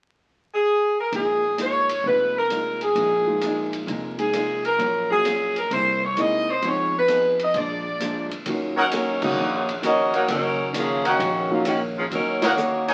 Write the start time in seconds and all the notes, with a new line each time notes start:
0.54 G#4
1.00 A#4
1.12 A#1 A#2 G#3 D#4 F4 G#4, kick, ride
1.57 A#2 G#3 D#4 F4 C#5, hi-hat pedal, ride
1.89 ride
2.04 F1 A#2 G#3 D#4 F4 B4, kick
2.38 A#4
2.50 A#2 G#3 D#4 F4, hi-hat pedal, ride
2.81 G#4, ride
2.95 A#1 A#2 G#3 D#4 F4, kick, ride
3.27 G#3 A#3 D#4 F4
3.41 A#2 G#3 D#4 F4, hi-hat pedal, ride
3.73 ride
3.87 F1 A#2 G#3 D#4 F4, kick, ride
4.18 G#3 A#3 D#4 G#4, ride
4.33 A#2 G#3 D#4 F4, hi-hat pedal, ride
4.65 A#4, ride
4.78 A#1 A#2 F#3 C#4, kick, ride
4.83 F4
5.11 F#3 A#3 C#4 F4 G#4
5.25 A#2 F#3 C#4 F4, hi-hat pedal, ride
5.56 A#4, ride
5.71 C2 C3 A#3 E4 G#4 C5, kick, ride
6.03 C#5
6.16 C3 G#3 A#3 D#4 E4 G#4 D#5, hi-hat pedal, ride
6.50 C5
6.62 F2 F3 G#3 B3 D#4 F4 G#4, kick, ride
6.66 C#5
6.97 B4
7.08 F3 B3 D#4 G#4, hi-hat pedal, ride
7.39 D#5, ride
7.54 A#1 A#2 F3 G#3 D4 D5, kick, ride
8.00 A#2 F3 G#3 D4, hi-hat pedal, ride
8.29 E2, ride
8.46 D#2 D#3 F#3 A#3 C#4 D#4 F4 F#4, kick, ride
8.77 F#3 C#4 D#4 A#4 C#5 F#5
8.91 D#3 A#3 C#4 F#4, hi-hat pedal, ride
9.22 C#2 F#3 A#3 C#4 D#4 F#4 G#4 C#5, kick, crash
9.36 A#1 D#3 A#3 C#4
9.41 F#4
9.69 ride
9.82 D#3 A#3 C#4 F#4 A#4 D#5, hi-hat pedal, ride
10.13 A#3 D#4 F#4 A#4 C#5 F#5, ride
10.28 F#1 D#3 F#3 A#3 C#4 D#4 F#4 A#4, kick, ride
10.73 D#3 A#3 C#4 F#4, hi-hat pedal, ride
10.77 F3 A#3 G#4
11.04 D#3 A#3 C#4 D#4 F#4 A#4 C#5 F#5, ride
11.19 A#1 D#3 A#3 C#4 F#4, kick, ride
11.51 F#3 A#3 C#4 D#4 F4
11.65 D#3 A#3 C#4 F#4, hi-hat pedal, ride
11.98 F3 A#3 C#4 G#4
12.10 D#2 D#3 F#3 A#3 C#4 D#4 A#4, kick, ride
12.15 C#4 F#4
12.42 A#3 D#4 F#4 A#4 C#5 F#5, snare, ride
12.57 D#3 A#3 C#4 F#4, hi-hat pedal
12.88 D#4 A#4 C#5 G#5, ride